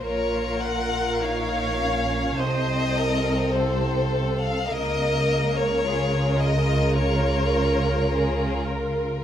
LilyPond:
<<
  \new Staff \with { instrumentName = "Violin section" } { \time 4/4 \key bes \minor \tempo 4 = 52 des''8 ges''8 f''4 ees''4 c''8. f''16 | ees''8. des''8. ees''8 des''4. r8 | }
  \new Staff \with { instrumentName = "Viola section" } { \time 4/4 \key bes \minor bes'4 des''4 c''8 bes'8 a'4 | bes'4 aes'8 bes'2~ bes'8 | }
  \new Staff \with { instrumentName = "Violin section" } { \time 4/4 \key bes \minor << { bes'2 a'2 | bes'2. aes'8 bes'8 | } \\ { f'4 ees'8 des'8 c'2 | bes4 f'2. | } >> }
  \new Staff \with { instrumentName = "Cello section" } { \clef bass \time 4/4 \key bes \minor bes,2 c2 | des1 | }
  \new Staff \with { instrumentName = "Double bass section" } { \clef bass \time 4/4 \key bes \minor bes,,2 c,2 | des,1 | }
>>